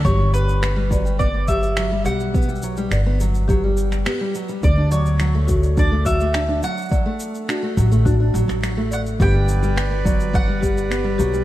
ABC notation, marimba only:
X:1
M:4/4
L:1/8
Q:1/4=105
K:Glyd
V:1 name="Marimba"
G z2 d z G z G | z2 d z G z G z | z d z F z F z2 | d z F z F z2 d |
G z2 d z G z G |]